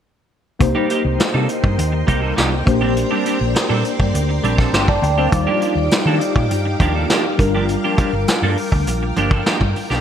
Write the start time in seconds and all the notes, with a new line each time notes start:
0.59 C2 A#3 D#4 G4 A#4 C5 D#5 G5 C6, muted clean electric guitar stroke, kick, closed hi-hat
0.75 G3 A#3 D#4 G4
0.90 G3 A#3 D#4 G4, closed hi-hat
1.05 C2, muted clean electric guitar stroke
1.19 muted clean electric guitar stroke, snare, closed hi-hat
1.34 C3 G3 A#3 D#4 A4
1.49 muted clean electric guitar stroke, closed hi-hat
1.64 G2, muted clean electric guitar stroke, kick
1.78 D#2, muted clean electric guitar stroke, closed hi-hat
1.92 muted clean electric guitar stroke
2.07 C2 G3 A#3 D#4 G4, kick, closed hi-hat
2.22 G3 A#3 D#4 A4
2.36 C2 G3 A#3 D#4 G4, snare, closed hi-hat
2.51 muted clean electric guitar stroke
2.66 A#1 A#3 D4 G4 C5 D5, muted clean electric guitar stroke, kick, closed hi-hat
2.81 G3 C4 D4 G4
2.96 muted clean electric guitar stroke, closed hi-hat
3.11 G3 C4 D4 G4
3.25 G3 C4 D4 G4, closed hi-hat
3.40 A#1, muted clean electric guitar stroke
3.54 muted clean electric guitar stroke, muted fingered electric bass stroke, snare, closed hi-hat
3.69 A#2 G3 C4 D4 A4
3.85 muted clean electric guitar stroke, closed hi-hat
3.99 G2, muted clean electric guitar stroke, kick
4.14 D2, muted clean electric guitar stroke, closed hi-hat
4.29 muted clean electric guitar stroke
4.43 A#1 G3 C4 D4 G4, closed hi-hat
4.58 G3 C4 D4 A4, kick, snare
4.73 G1 G3 C4 D4 G4 G5 C6, snare, closed hi-hat
4.88 D5 A5, muted clean electric guitar stroke, kick
5.02 D2 D5 G5, muted clean electric guitar stroke, closed hi-hat
5.18 G3 C4 D4 G4 C5 F5
5.31 D#2 G3 D#4 F4 G4 D5 F5 D6, muted clean electric guitar stroke, kick, closed hi-hat
5.47 F3 A#3 D4 G4
5.61 F3 A#3 D4 G4, closed hi-hat
5.75 D#2, muted clean electric guitar stroke
5.90 muted fingered electric bass stroke, muted clean electric guitar stroke, snare, closed hi-hat
6.05 D#3 F3 A#3 D4 A4
6.21 muted clean electric guitar stroke, closed hi-hat
6.36 A#2, muted clean electric guitar stroke, kick
6.50 G2, muted clean electric guitar stroke, closed hi-hat
6.66 muted clean electric guitar stroke
6.80 D#2 F3 A#3 D4 G4, kick, closed hi-hat
6.95 F3 A#3 D4 A4
7.10 F3 A#3 D4 G4, snare, closed hi-hat
7.26 muted clean electric guitar stroke
7.38 G1 G3 D4 F4 A#4 G5 D6, muted clean electric guitar stroke, kick, closed hi-hat
7.55 F3 A#3 D4 G4
7.69 muted clean electric guitar stroke, closed hi-hat
7.84 F3 A#3 D4 G4
7.98 F3 A#3 D4 G4, kick, closed hi-hat
8.13 G1, muted clean electric guitar stroke
8.28 muted clean electric guitar stroke, snare, closed hi-hat
8.42 G2 F3 A#3 D4 A4
8.57 muted clean electric guitar stroke, open hi-hat
8.72 D2, muted clean electric guitar stroke, kick
8.87 A#1, muted clean electric guitar stroke, closed hi-hat
9.03 muted clean electric guitar stroke
9.16 G1 F3 A#3 D4 G4, closed hi-hat
9.31 F3 A#3 D4 A4, kick
9.46 F3 A#3 D4 G4, snare, closed hi-hat
9.61 G2, muted clean electric guitar stroke, kick
9.76 muted clean electric guitar stroke, open hi-hat
9.90 B1 F3 A#3 D4 G4, snare